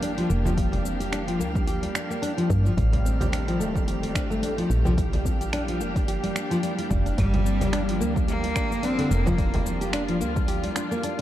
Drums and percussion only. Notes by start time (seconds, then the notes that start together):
0.03 open hi-hat, cabasa
0.18 open hi-hat
0.30 cabasa
0.45 frame drum, cabasa
0.57 kick, open hi-hat, cabasa
0.72 open hi-hat, frame drum
0.86 cabasa
1.01 open hi-hat, cabasa
1.13 finger snap, open hi-hat, cabasa
1.28 open hi-hat
1.41 cabasa
1.55 kick, cabasa
1.68 open hi-hat, cabasa
1.83 open hi-hat
1.95 finger snap, cabasa
2.11 cabasa
2.23 open hi-hat, cabasa
2.38 open hi-hat
2.50 kick, cabasa
2.66 cabasa
2.77 kick, open hi-hat, cabasa
2.93 open hi-hat, frame drum
3.06 cabasa
3.21 open hi-hat, frame drum, cabasa
3.33 finger snap, open hi-hat, cabasa
3.48 open hi-hat
3.61 cabasa
3.76 kick, cabasa
3.88 open hi-hat, cabasa
4.03 open hi-hat
4.15 finger snap, kick, cabasa
4.32 cabasa
4.43 open hi-hat, cabasa
4.58 open hi-hat
4.71 cabasa
4.85 frame drum, cabasa
4.98 kick, open hi-hat, cabasa
5.13 open hi-hat, frame drum
5.25 kick, cabasa
5.41 open hi-hat, cabasa
5.53 finger snap, open hi-hat, cabasa
5.68 open hi-hat
5.81 cabasa
5.96 kick, open hi-hat, cabasa
6.08 open hi-hat, cabasa
6.24 open hi-hat
6.36 finger snap, cabasa
6.51 open hi-hat, cabasa
6.63 open hi-hat, cabasa
6.79 open hi-hat
6.91 kick, cabasa
7.06 open hi-hat, cabasa
7.18 kick, open hi-hat, cabasa
7.34 open hi-hat, frame drum
7.46 cabasa
7.61 open hi-hat, frame drum, cabasa
7.73 finger snap, open hi-hat, cabasa
7.89 open hi-hat
8.01 cabasa
8.16 kick, cabasa
8.28 open hi-hat, cabasa
8.44 open hi-hat
8.56 finger snap, kick, cabasa
8.72 cabasa
8.83 open hi-hat, cabasa
8.99 open hi-hat
9.11 cabasa
9.27 frame drum, cabasa
9.38 kick, open hi-hat, cabasa
9.54 open hi-hat, frame drum
9.66 cabasa
9.81 open hi-hat, cabasa
9.93 finger snap, open hi-hat, cabasa
10.09 open hi-hat
10.21 cabasa
10.36 kick, cabasa
10.48 open hi-hat, cabasa
10.64 open hi-hat
10.76 finger snap, cabasa
10.92 cabasa
11.03 open hi-hat, cabasa